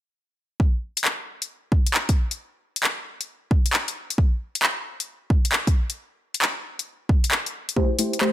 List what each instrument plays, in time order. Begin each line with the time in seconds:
0.60 kick
0.97 closed hi-hat
1.05 clap
1.42 closed hi-hat
1.72 kick
1.87 closed hi-hat
1.94 clap
2.09 kick, closed hi-hat
2.31 closed hi-hat
2.76 closed hi-hat
2.84 clap
3.21 closed hi-hat
3.51 kick
3.66 closed hi-hat
3.73 clap
3.88 closed hi-hat
4.10 closed hi-hat
4.18 kick
4.55 closed hi-hat
4.63 clap
5.00 closed hi-hat
5.30 kick
5.45 closed hi-hat
5.52 clap
5.67 kick, closed hi-hat
5.90 closed hi-hat
6.34 closed hi-hat
6.42 clap
6.79 closed hi-hat
7.09 kick
7.24 closed hi-hat
7.31 clap
7.46 closed hi-hat
7.69 closed hi-hat
7.77 synth stab A3 E4 G4 C5, kick
7.99 synth stab A3 E4 G4 C5, open hi-hat
8.13 closed hi-hat
8.21 synth stab A3 E4 G4 C5, clap